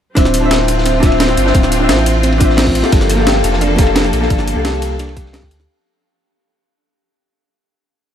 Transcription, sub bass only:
0.17 1.36 D1 loud
1.37 1.53 G1 loud
1.55 1.91 D1 loud
1.89 2.83 A1 medium
2.92 3.43 G1 loud
3.44 4.12 F1 loud
4.13 4.29 A#1 medium
4.30 4.55 G1 loud
4.56 5.44 C2 medium
5.42 5.67 D2 loud

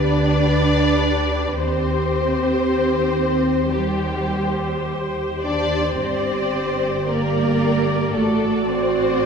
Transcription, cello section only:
0.00 1.57 D4 medium
1.57 3.71 C4 medium
3.75 4.87 G3 medium
5.43 5.95 D4 medium
5.99 6.99 C4 medium
7.00 7.07 C4 soft
7.08 8.16 A#3 medium
8.17 8.70 A3 medium
8.70 9.26 C4 medium

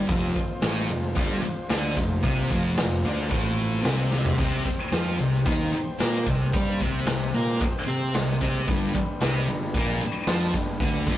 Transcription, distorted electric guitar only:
0.08 0.34 F2 loud
0.08 0.35 F3 loud
0.35 muted distorted electric guitar stroke medium
0.62 0.88 A2 medium
0.62 0.89 A3 loud
0.89 1.10 F2 medium
1.15 1.42 G2 medium
1.15 1.42 G3 medium
1.42 muted distorted electric guitar stroke medium
1.69 1.96 D3 medium
1.69 1.96 D4 loud
1.96 2.18 F2 medium
2.23 2.49 C3 loud
2.23 2.50 C4 loud
2.50 2.76 F2 medium
2.50 2.77 F3 loud
2.77 2.99 F2 medium
3.04 3.29 D3 medium
3.04 3.30 D4 loud
3.29 3.83 A2 medium
3.29 3.84 A3 loud
3.83 4.37 C3 medium
3.83 4.38 C4 loud
4.38 4.64 C3 loud
4.38 4.65 C4 loud
4.65 muted distorted electric guitar stroke medium
4.92 5.18 F3 medium
4.92 5.19 F4 loud
5.20 5.41 C3 medium
5.46 5.72 D#3 medium
5.46 5.72 D#4 loud
5.73 muted distorted electric guitar stroke medium
5.99 6.25 A#3 medium
5.99 6.26 A#4 loud
6.26 6.48 C3 medium
6.53 6.79 G3 loud
6.53 6.79 G4 loud
6.80 7.05 C3 medium
6.80 7.07 C4 medium
7.06 7.28 C3 medium
7.34 7.60 A#3 medium
7.34 7.60 A#4 loud
7.61 muted distorted electric guitar stroke medium
7.86 8.13 C4 medium
7.86 8.13 C5 loud
8.15 8.36 C3 medium
8.41 8.67 C3 medium
8.41 8.67 C4 loud
8.68 8.93 G2 loud
8.68 8.94 G3 loud
8.95 muted distorted electric guitar stroke medium
9.21 9.47 C3 medium
9.21 9.47 C4 loud
9.48 9.69 G2 medium
9.75 10.00 A#2 medium
9.75 10.01 A#3 loud
10.03 muted distorted electric guitar stroke medium
10.27 10.53 F3 loud
10.27 10.53 F4 loud
10.54 10.75 G2 medium
10.81 11.06 D3 loud
10.81 11.07 D4 loud
11.07 11.18 G2 medium
11.07 11.18 G3 loud

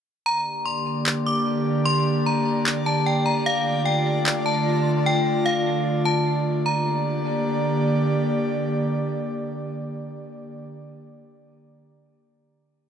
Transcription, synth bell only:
0.26 0.64 A#5 medium
0.65 1.22 C6 medium
1.26 1.83 D6 medium
1.85 2.23 C6 loud
2.26 2.83 A#5 medium
2.86 3.05 A5 medium
3.06 3.25 G5 medium
3.26 3.45 A#5 medium
3.46 3.84 F5 loud
3.85 4.42 G5 medium
4.46 5.02 A5 medium
5.06 5.44 G5 medium
5.46 6.02 F5 medium
6.05 6.25 A5 medium
6.66 7.82 A#5 medium

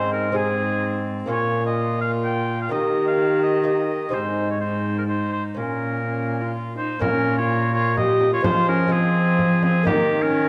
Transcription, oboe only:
0.00 0.11 C5 medium
0.12 0.38 A#4 medium
0.36 1.07 G#4 medium
1.30 1.63 C#5 medium
1.66 2.00 D#5 medium
2.01 2.11 F5 medium
2.25 2.59 G5 medium
2.62 2.71 F5 medium
2.71 3.06 D#5 medium
3.08 3.42 F5 medium
3.43 3.66 D#5 medium
3.66 4.15 D#5 medium
4.14 4.49 C5 medium
4.50 4.60 C#5 medium
4.61 4.96 C5 medium
4.98 5.03 A#4 medium
5.08 5.31 C5 medium
5.32 5.43 C5 medium
5.57 6.51 A#4 medium
6.78 7.00 C5 medium
7.02 7.37 A#4 medium
7.38 7.72 C#5 medium
7.73 7.96 C#5 medium
7.97 8.32 D#5 medium
8.33 8.43 C#5 medium
8.44 8.67 C5 medium
8.68 8.93 A#4 medium
8.92 9.63 G#4 medium
9.63 9.86 G#4 medium
9.86 10.24 G4 medium
10.22 10.49 A#4 medium

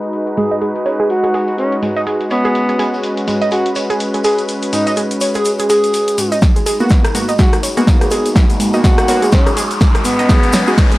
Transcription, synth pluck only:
0.37 0.46 G#3 medium
0.51 0.56 D#5 loud
0.62 0.71 G#4 medium
0.86 0.95 C#5 medium
1.00 1.04 G#4 loud
1.24 1.28 G#4 medium
1.34 1.38 G#4 loud
1.83 1.92 G#3 medium
1.96 2.01 D#5 loud
2.07 2.16 G#4 medium
2.31 2.40 C#5 medium
2.45 2.49 G#4 loud
2.69 2.73 G#4 medium
2.79 2.83 G#4 loud
3.28 3.37 G#3 medium
3.42 3.46 D#5 loud
3.52 3.61 G#4 medium
3.76 3.85 C#5 medium
3.90 3.94 G#4 loud
4.14 4.19 G#4 medium
4.24 4.28 G#4 loud
4.73 4.82 G#3 medium
4.87 4.91 D#5 loud
4.97 5.06 G#4 medium
5.21 5.30 C#5 medium
5.35 5.40 G#4 loud
5.59 5.64 G#4 medium
5.70 5.73 G#4 loud
6.18 6.27 G#3 medium
6.32 6.36 D#5 loud
6.56 6.61 G#4 medium
6.66 6.70 G#4 loud
7.15 7.24 G#3 medium
7.29 7.33 D#5 loud
7.39 7.48 G#4 medium
7.63 7.72 C#5 medium
7.77 7.81 G#4 loud
8.01 8.06 G#4 medium
8.11 8.15 G#4 loud
8.60 8.69 G#3 medium
8.74 8.78 D#5 loud
8.84 8.93 G#4 medium
9.08 9.17 C#5 medium
9.22 9.27 G#4 loud
9.46 9.51 G#4 medium
9.57 9.60 G#4 loud
10.05 10.14 G#3 medium
10.19 10.23 D#5 loud
10.29 10.38 G#4 medium
10.53 10.63 C#5 medium
10.67 10.72 G#4 loud
10.92 10.96 G#4 medium

